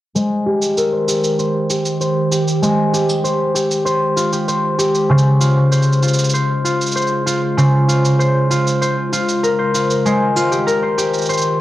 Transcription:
0.15 5.10 D#3 medium
0.15 2.62 G#3 medium
0.15 0.92 C5 medium
0.15 cabasa soft
0.46 1.07 G4 medium
0.62 11.61 G#3 medium
0.62 cabasa soft
0.77 2.89 A#4 medium
0.77 cabasa soft
0.92 1.38 C5 soft
1.08 1.69 G4 soft
1.08 cabasa medium
1.24 cabasa soft
1.30 6.11 G4 medium
1.39 2.00 C5 medium
1.39 cabasa soft
1.70 2.31 G4 soft
1.70 cabasa medium
1.85 cabasa soft
1.96 11.61 C5 medium
2.01 2.62 C5 medium
2.01 cabasa soft
2.31 2.93 G4 soft
2.31 cabasa medium
2.48 cabasa soft
2.62 8.48 G#3 medium
2.62 3.23 C5 medium
2.62 cabasa soft
2.93 3.54 G4 medium
2.93 cabasa medium
3.09 cabasa soft
3.24 3.85 C5 medium
3.24 cabasa soft
3.55 4.32 G4 medium
3.55 cabasa medium
3.71 cabasa soft
3.85 4.48 C5 medium
3.85 cabasa soft
4.17 5.40 F4 soft
4.17 cabasa medium
4.33 4.78 G4 soft
4.33 cabasa soft
4.48 5.10 C5 medium
4.48 cabasa soft
4.78 7.14 G4 medium
4.78 cabasa medium
4.95 cabasa soft
5.09 7.56 C#3 medium
5.09 10.05 C#3 medium
5.09 5.71 C5 medium
5.18 cabasa soft
5.40 6.02 F4 medium
5.40 cabasa medium
5.72 6.33 C5 medium
5.72 cabasa soft
5.82 cabasa soft
5.93 cabasa soft
6.03 6.64 F4 medium
6.03 cabasa soft
6.08 cabasa soft
6.14 cabasa soft
6.19 cabasa medium
6.24 cabasa medium
6.29 cabasa medium
6.34 6.95 C5 medium
6.34 cabasa soft
6.56 11.39 F4 medium
6.64 7.26 F4 soft
6.64 cabasa medium
6.81 cabasa soft
6.86 cabasa soft
6.91 7.57 C5 medium
6.91 cabasa soft
6.97 cabasa soft
7.07 cabasa soft
7.26 7.88 F4 soft
7.26 cabasa medium
7.57 10.09 C#3 medium
7.57 8.19 C5 medium
7.57 cabasa soft
7.88 8.50 F4 medium
7.88 cabasa medium
8.05 cabasa soft
8.19 8.81 C5 medium
8.19 cabasa soft
8.50 9.12 F4 medium
8.50 cabasa medium
8.67 cabasa soft
8.81 9.58 C5 medium
8.81 cabasa soft
9.12 9.74 F4 medium
9.12 cabasa medium
9.28 cabasa soft
9.43 10.66 A#4 medium
9.43 cabasa soft
9.58 10.05 C5 soft
9.74 10.36 F4 soft
9.74 cabasa medium
9.90 cabasa soft
10.05 11.61 D#3 medium
10.05 11.61 G#3 medium
10.05 10.82 C5 medium
10.05 cabasa soft
10.36 11.61 F4 medium
10.36 cabasa medium
10.51 10.97 G4 soft
10.51 cabasa soft
10.67 11.61 A#4 medium
10.67 cabasa soft
10.82 11.28 C5 soft
10.98 11.59 G4 medium
10.98 cabasa medium
11.03 11.61 G4 medium
11.14 cabasa soft
11.18 cabasa soft
11.22 cabasa soft
11.25 11.61 C5 medium
11.25 cabasa soft
11.29 cabasa soft
11.33 cabasa soft
11.38 cabasa soft
11.41 cabasa soft

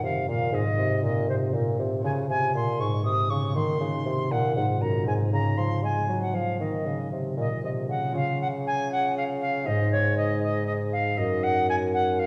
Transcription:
0.00 0.56 F#2 medium
0.00 0.28 A#2 medium
0.00 0.27 C3 medium
0.00 0.56 C3 medium
0.00 0.56 C#3 medium
0.00 0.56 D#3 medium
0.00 0.55 A#3 soft
0.00 0.50 D#4 medium
0.00 0.56 A#4 soft
0.00 0.28 F5 medium
0.28 0.52 A#2 medium
0.28 0.56 A#2 medium
0.28 0.55 F5 medium
0.50 0.64 G#2 medium
0.50 2.07 G#2 medium
0.50 2.05 C4 medium
0.50 2.06 D#4 medium
0.50 2.03 G#4 medium
0.50 1.03 D#5 medium
0.78 1.05 C3 medium
0.78 1.28 C3 medium
1.03 1.30 A#2 medium
1.03 1.54 A#2 medium
1.03 1.28 D#5 loud
1.28 1.55 C3 medium
1.28 1.78 C3 medium
1.28 1.35 C5 medium
1.54 1.78 A#2 medium
1.54 2.07 A#2 medium
1.79 2.03 C3 medium
1.79 2.07 C3 medium
2.01 2.28 C#3 medium
2.01 3.29 C#3 medium
2.01 3.56 F4 medium
2.01 3.57 G#4 medium
2.01 3.56 C#5 medium
2.01 2.11 G#5 medium
2.29 2.54 C3 medium
2.29 3.05 C3 medium
2.29 2.54 G#5 loud
2.54 2.81 A#2 medium
2.54 3.58 A#2 medium
2.54 2.81 C6 loud
2.80 3.04 G#2 medium
2.80 3.58 G#2 medium
2.80 3.04 C#6 medium
3.05 3.29 C3 medium
3.05 3.58 C3 medium
3.05 3.31 D#6 loud
3.30 3.54 C#3 medium
3.30 3.58 C#3 medium
3.30 3.55 C#6 medium
3.52 3.80 D#3 medium
3.52 5.07 A#3 medium
3.52 5.03 D#4 medium
3.52 5.09 F#4 medium
3.52 4.32 C6 loud
3.56 5.09 D#3 medium
3.80 4.04 C#3 medium
3.80 5.09 C#3 soft
4.05 4.30 C3 medium
4.05 5.09 C3 medium
4.31 4.56 A#2 medium
4.31 5.09 A#2 medium
4.31 4.55 F#5 loud
4.56 5.06 G#2 medium
4.56 4.83 G#2 medium
4.56 4.82 F#5 medium
4.81 5.06 F#2 medium
4.81 5.09 F#2 medium
4.81 5.06 A#5 medium
5.03 5.32 G#2 medium
5.03 6.63 G#2 medium
5.03 6.61 C4 medium
5.03 6.57 D#4 medium
5.03 6.62 G#4 medium
5.03 5.13 G#5 loud
5.33 5.57 C#3 medium
5.33 6.63 C#3 medium
5.33 5.59 A#5 loud
5.57 6.33 F3 medium
5.57 5.84 F3 medium
5.57 5.83 C6 loud
5.83 6.08 G#3 medium
5.83 6.62 G#3 medium
5.83 6.21 G#5 medium
6.08 8.17 F#3 medium
6.08 6.36 F#3 medium
6.22 6.36 F#5 medium
6.34 6.62 F3 soft
6.34 6.59 F3 medium
6.34 6.59 F5 medium
6.57 6.88 D#3 medium
6.57 8.17 D#3 medium
6.57 8.15 A#3 soft
6.57 8.15 D#4 soft
6.57 8.16 F#4 medium
6.57 7.08 D#5 medium
6.86 7.11 C#3 medium
6.86 7.88 C#3 soft
7.12 7.36 C3 medium
7.12 7.62 C3 soft
7.37 7.49 A#2 medium
7.37 8.17 A#2 medium
7.37 7.62 D#5 medium
7.63 7.88 C3 medium
7.63 8.17 C3 soft
7.63 7.70 D#5 medium
7.88 8.14 C#3 medium
7.88 8.14 C#3 soft
7.88 8.14 F#5 medium
8.12 9.68 C#3 medium
8.12 9.69 C#3 medium
8.12 9.67 C#4 medium
8.12 9.68 F4 medium
8.12 9.64 G#4 medium
8.16 8.40 F5 loud
8.41 8.47 F#5 loud
8.66 8.91 G#5 loud
8.92 9.16 F#5 loud
9.17 9.23 F5 loud
9.41 9.67 F5 loud
9.63 11.20 G#2 medium
9.63 11.21 G#2 medium
9.63 11.14 D#4 medium
9.63 11.19 G#4 medium
9.63 11.20 C5 medium
9.63 9.91 D#5 loud
9.91 10.16 C#5 loud
10.17 10.42 D#5 loud
10.42 10.66 D#5 loud
10.66 10.72 D#5 loud
10.92 11.19 F5 loud
11.15 12.27 F#2 medium
11.15 12.27 D#4 medium
11.15 12.27 A#4 medium
11.15 11.44 D#5 loud
11.15 12.27 D#5 medium
11.43 11.68 F#5 loud
11.69 11.75 G#5 loud
11.93 12.20 F#5 loud
12.19 12.27 F5 loud

